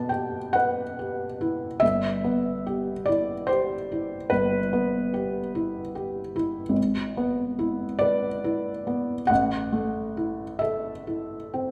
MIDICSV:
0, 0, Header, 1, 2, 480
1, 0, Start_track
1, 0, Key_signature, 1, "minor"
1, 0, Tempo, 851064
1, 1029, Time_signature, 12, 3, 24, 8
1, 1505, Tempo, 820793
1, 4385, Tempo, 859599
1, 5825, Tempo, 918836
1, 6629, End_track
2, 0, Start_track
2, 0, Title_t, "Felt piano"
2, 0, Program_c, 0, 0
2, 0, Control_c, 0, 64, 127
2, 0, Note_on_c, 0, 47, 39
2, 0, Note_on_c, 0, 59, 41
2, 0, Note_on_c, 0, 64, 35
2, 0, Note_on_c, 0, 67, 38
2, 0, Note_on_c, 0, 81, 82
2, 52, Note_on_c, 0, 79, 51
2, 61, Note_off_c, 0, 81, 0
2, 69, Note_off_c, 0, 67, 0
2, 69, Note_on_c, 0, 67, 33
2, 214, Note_off_c, 0, 59, 0
2, 299, Note_on_c, 0, 78, 70
2, 306, Note_off_c, 0, 79, 0
2, 313, Note_on_c, 0, 71, 42
2, 462, Note_off_c, 0, 67, 0
2, 559, Note_on_c, 0, 67, 32
2, 700, Note_off_c, 0, 71, 0
2, 794, Note_off_c, 0, 64, 0
2, 794, Note_on_c, 0, 64, 46
2, 935, Note_off_c, 0, 67, 0
2, 1014, Note_on_c, 0, 76, 81
2, 1021, Note_off_c, 0, 78, 0
2, 1028, Note_on_c, 0, 31, 45
2, 1029, Note_off_c, 0, 64, 0
2, 1038, Control_c, 0, 64, 0
2, 1041, Note_off_c, 0, 47, 0
2, 1126, Control_c, 0, 64, 127
2, 1265, Note_on_c, 0, 59, 40
2, 1503, Note_on_c, 0, 67, 44
2, 1651, Note_off_c, 0, 59, 0
2, 1731, Note_on_c, 0, 74, 64
2, 1741, Note_off_c, 0, 76, 0
2, 1746, Note_on_c, 0, 64, 43
2, 1893, Note_off_c, 0, 67, 0
2, 1972, Note_on_c, 0, 72, 68
2, 1981, Note_off_c, 0, 74, 0
2, 1986, Note_on_c, 0, 67, 48
2, 2133, Note_off_c, 0, 64, 0
2, 2235, Note_on_c, 0, 64, 36
2, 2375, Note_off_c, 0, 67, 0
2, 2449, Note_off_c, 0, 31, 0
2, 2457, Note_on_c, 0, 71, 68
2, 2464, Note_off_c, 0, 72, 0
2, 2470, Note_on_c, 0, 31, 44
2, 2619, Note_off_c, 0, 64, 0
2, 2710, Note_on_c, 0, 59, 44
2, 2949, Note_on_c, 0, 67, 38
2, 3095, Note_off_c, 0, 59, 0
2, 3191, Note_on_c, 0, 64, 45
2, 3334, Note_off_c, 0, 67, 0
2, 3426, Note_on_c, 0, 67, 42
2, 3573, Note_off_c, 0, 64, 0
2, 3661, Note_off_c, 0, 71, 0
2, 3663, Note_on_c, 0, 64, 51
2, 3808, Note_off_c, 0, 67, 0
2, 3858, Note_on_c, 0, 32, 51
2, 3881, Note_off_c, 0, 31, 0
2, 3903, Note_off_c, 0, 64, 0
2, 3916, Control_c, 0, 64, 0
2, 3995, Control_c, 0, 64, 127
2, 4139, Note_on_c, 0, 59, 40
2, 4382, Note_on_c, 0, 64, 48
2, 4524, Note_off_c, 0, 59, 0
2, 4605, Note_on_c, 0, 74, 77
2, 4619, Note_on_c, 0, 71, 38
2, 4764, Note_off_c, 0, 64, 0
2, 4859, Note_on_c, 0, 64, 44
2, 5003, Note_off_c, 0, 71, 0
2, 5097, Note_on_c, 0, 59, 35
2, 5241, Note_off_c, 0, 64, 0
2, 5293, Note_off_c, 0, 32, 0
2, 5322, Note_on_c, 0, 78, 76
2, 5330, Note_off_c, 0, 74, 0
2, 5336, Note_on_c, 0, 33, 58
2, 5337, Note_off_c, 0, 59, 0
2, 5349, Control_c, 0, 64, 0
2, 5446, Control_c, 0, 64, 127
2, 5575, Note_on_c, 0, 57, 36
2, 5824, Note_on_c, 0, 64, 36
2, 5963, Note_off_c, 0, 57, 0
2, 6043, Note_on_c, 0, 76, 64
2, 6052, Note_off_c, 0, 78, 0
2, 6057, Note_on_c, 0, 69, 45
2, 6204, Note_off_c, 0, 64, 0
2, 6295, Note_on_c, 0, 64, 35
2, 6443, Note_off_c, 0, 69, 0
2, 6537, Note_on_c, 0, 60, 41
2, 6629, Note_off_c, 0, 33, 0
2, 6629, Note_off_c, 0, 60, 0
2, 6629, Note_off_c, 0, 64, 0
2, 6629, Note_off_c, 0, 76, 0
2, 6629, End_track
0, 0, End_of_file